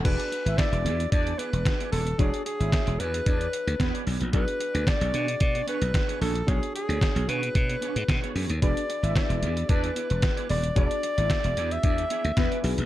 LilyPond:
<<
  \new Staff \with { instrumentName = "Alto saxophone" } { \time 4/4 \key e \mixolydian \tempo 4 = 112 b'4 d''4 d''8 b'4 a'8 | gis'8 gis'4 b'2 r8 | b'4 d''4 d''8 b'4 a'8 | gis'8 gis'4 b'2 r8 |
d''4 d''4 b'4. d''8 | d''4.~ d''16 e''4.~ e''16 r8 | }
  \new Staff \with { instrumentName = "FM electric piano" } { \time 4/4 \key e \mixolydian << { <a' fis''>16 r2. r8. | r1 | r1 | r1 |
r1 | r1 | } \\ { <d' fis' gis' b'>1 | <d' fis' gis' cis''>1 | <d' fis' gis' d''>1 | <d' fis' gis' cis''>1 |
<d' fis' gis' b'>1 | <d' fis' gis' d''>2.~ <d' fis' gis' d''>8 <d' fis' gis' b'>8 | } >> }
  \new Staff \with { instrumentName = "Analog polysynth" } { \time 4/4 \key e \mixolydian <d' d''>8 r16 <e' e''>8. r8 <d' d''>8 r4. | <d' d''>8 r16 <e' e''>8. r8 <d' d''>8 r8 <b b'>8 r8 | r1 | r1 |
<d' d''>8 r16 <e' e''>8. r8 <d' d''>8 r4. | <d' d''>8 r16 <e' e''>8. r8 <d' d''>8 r8 <b b'>8 r8 | }
  \new Staff \with { instrumentName = "Clean electric guitar" } { \time 4/4 \key e \mixolydian <b e' gis' d''>16 r8 <b e' gis' e''>16 r16 <b e' gis' d''>16 <b e' gis' d''>16 r8 <b e' gis' d''>16 <b e' gis' d''>16 r8 <b e' gis' d''>16 <b e' gis' d''>16 r16 | <b e' gis' d''>16 r8 <b e' gis' e''>16 r16 <b e' gis' d''>16 <b e' gis' d''>16 r4. <b e' gis' d''>16 <b e' gis' d''>16 r16 | <b d' gis' cis''>16 r8 <b d' gis' d''>16 r16 <b d' gis' cis''>16 <b d' gis' cis''>16 r8 <b d' gis' cis''>16 <b d' gis' cis''>16 r8 <b d' gis' cis''>16 <b d' gis' cis''>16 r16 | <b d' gis' cis''>16 r8 <b d' gis' d''>16 r16 <b d' gis' cis''>16 <b d' gis' cis''>16 r8 <b d' gis' cis''>16 <b d' gis' cis''>16 r8 <b d' gis' cis''>16 <b d' gis' cis''>16 r16 |
<b e' gis' d''>16 r8 <b e' gis' e''>16 r16 <b e' gis' d''>16 <b e' gis' d''>16 r8 <b e' gis' d''>16 <b e' gis' d''>16 r8 <b e' gis' d''>16 <b e' gis' d''>16 r16 | <b e' gis' d''>16 r8 <b e' gis' e''>16 r16 <b e' gis' d''>16 <b e' gis' d''>16 r8 <b e' gis' d''>16 <b e' gis' d''>16 r8 <b e' gis' d''>16 <b e' gis' d''>16 r16 | }
  \new Staff \with { instrumentName = "Slap bass" } { \clef bass \time 4/4 \key e \mixolydian e,,16 r8 gis,,16 r16 e,,16 e,8 e,8 r16 e,,16 r8 dis,,8 | e,,16 r8 gis,,16 r16 e,,16 e,8 e,8 r16 d,16 e,16 r16 b,,16 ais,,16 | b,,16 r8 d,16 r16 b,,16 b,8 b,8 r16 b,,16 r8 ais,,8 | b,,16 r8 d,16 r16 b,,16 b,8 b,8 r16 gis,16 b,16 r16 fis,16 dis,16 |
e,,16 r8 gis,,16 r16 e,,16 e,8 e,8 r16 e,,16 r8 dis,,8 | e,,16 r8 gis,,16 r16 e,,16 e,8 e,8 r16 d,16 e,16 r16 b,,16 ais,,16 | }
  \new DrumStaff \with { instrumentName = "Drums" } \drummode { \time 4/4 <cymc hh bd>16 hh16 hh16 hh16 <hh bd sn>16 hh16 hh16 hh16 <hh bd>16 hh16 hh16 hh16 <hh bd sn>16 hh16 hho16 hh16 | <hh bd>16 hh16 hh16 hh16 <hh bd sn>16 hh16 hh16 hh16 <hh bd>16 hh16 hh16 hh16 <hh bd sn>16 hh16 hho16 hh16 | <hh bd>16 hh16 hh16 hh16 <hh bd sn>16 hh16 hh16 hh16 <hh bd>16 hh16 hh16 hh16 <hh bd sn>16 hh16 hho16 hh16 | <hh bd>16 hh16 hh16 hh16 <hh bd sn>16 hh16 hh16 hh16 <hh bd>16 hh16 hh16 hh16 <hh bd sn>16 hh16 hho16 hh16 |
<hh bd>16 hh16 hh16 hh16 <hh bd sn>16 hh16 hh16 hh16 <hh bd>16 hh16 hh16 hh16 <hh bd sn>16 hh16 hho16 hh16 | <hh bd>16 hh16 hh16 hh16 <hh bd sn>16 hh16 hh16 hh16 <hh bd>16 hh16 hh16 hh16 <hh bd sn>16 hh16 hho16 hh16 | }
>>